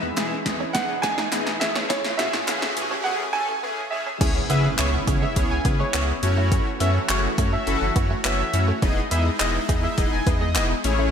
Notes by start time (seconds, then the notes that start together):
Already playing: E3 G#3 E4 E5, riser
0.03 E2, muted clean electric guitar stroke
0.17 E1 E3 B3 D#4 E4 G#4, snare, clap, closed hi-hat
0.32 muted clean electric guitar stroke
0.46 E2 E3 B3 D#4 G#4, kick, snare, closed hi-hat
0.60 C#4
0.73 E1 E3 B3 D#4 G#4 F#5, kick, snare, closed hi-hat
0.89 E1, muted clean electric guitar stroke
1.02 E2 E3 B3 D#4 G#4 G#5, kick, snare, closed hi-hat
1.18 D#4, snare
1.32 E1 E3 B3 D#4 G#4, snare, clap, closed hi-hat
1.47 snare
1.60 A1 C#3 E3 A3 C#4 G#4 E5, muted clean electric guitar stroke, snare, closed hi-hat
1.76 C#4, snare
1.89 E4 C#5, kick, snare, closed hi-hat
2.04 snare
2.17 A2 E3 A3 C#4 F#4 G#4 E5, snare, closed hi-hat
2.33 A2, muted clean electric guitar stroke, snare
2.48 A1 E3 A3 C#4 E4 G#4, snare, clap, closed hi-hat
2.62 muted clean electric guitar stroke, snare
2.76 A2 E3 A3 C#4 G#4, closed hi-hat
2.91 C#4
3.04 E3 A3 B3 C#4 G#4 F#5
3.20 muted clean electric guitar stroke
3.33 E3 A3 C#4 A4 G#5
3.49 C#4
3.63 E3 A3 B3 C#4 G#4
3.90 E3 A3 C#4 G#4 E5, muted clean electric guitar stroke
4.07 C#4
4.21 C#2 C#3 B3 C#4 E4 G#4 C#5, kick, closed hi-hat, crash, impact
4.49 C#3 B3 C#4 E4 G#4 B4 E5, closed hi-hat
4.65 muted clean electric guitar stroke
4.78 C#2 B3 C#4 E4 G#4 C#5 E5, muted clean electric guitar stroke, clap, closed hi-hat
5.07 C#3 G#3 B3 C#4 E4 G#4 C#5, kick, closed hi-hat
5.22 G#3 E5
5.36 C#2 B3 C#4 E4 G#4 C#5, muted clean electric guitar stroke, kick, closed hi-hat
5.51 C#2 G#5
5.65 C#3 B3 C#4 E4 G#4 B4, kick, closed hi-hat
5.80 G#3 C#5
5.94 C#2 B3 C#4 E4 G#4 C#5, clap, closed hi-hat
6.09 muted clean electric guitar stroke
6.23 F#2 E3 A3 C#4 E4 F#4 C#5, closed hi-hat
6.37 A3
6.52 C#4, kick, closed hi-hat
6.80 F#2 A3 B3 C#4 E4 F#4 C#5 E5, closed hi-hat
6.95 muted clean electric guitar stroke
7.09 F#1 A3 C#4 E4 F#4 G#4 C#5, muted clean electric guitar stroke, clap, closed hi-hat
7.38 F#2 A3 C#4 E4 F#4 C#5, kick, closed hi-hat
7.53 A3 E5
7.67 F#1 A3 C#4 E4 F#4 A4, muted clean electric guitar stroke, closed hi-hat
7.81 F#1
7.96 F#2 A3 B3 C#4 E4 F#4 C#5, kick, closed hi-hat
8.10 A3
8.24 F#1 A3 B3 C#4 E4 F#4 C#5 E5, clap, closed hi-hat
8.39 muted clean electric guitar stroke
8.53 F#2 A3 C#4 E4 F#4 C#5, closed hi-hat
8.68 A3
8.82 E1 G#3 B3 C#4 D#4 E4 G#4 D#5, kick, closed hi-hat
9.11 E2 B3 D#4 E4 G#4 D#5 E5, closed hi-hat
9.26 muted clean electric guitar stroke
9.40 E1 B3 D#4 E4 G#4 D#5, muted clean electric guitar stroke, clap, closed hi-hat
9.69 E2 G#3 B3 D#4 E4 G#4 D#5, kick, closed hi-hat
9.83 G#3 E5
9.98 E1 B3 D#4 E4 G#4 D#5, muted clean electric guitar stroke, kick, closed hi-hat
10.12 E1 G#5
10.26 E2 B3 D#4 E4 G#4 D#5, kick, closed hi-hat
10.41 G#3 D#5
10.55 E1 B3 D#4 E4 G#4 D#5, clap, closed hi-hat
10.70 muted clean electric guitar stroke
10.84 A1 C#3 A3 C#4 E4 G#4 C#5, closed hi-hat
10.99 A3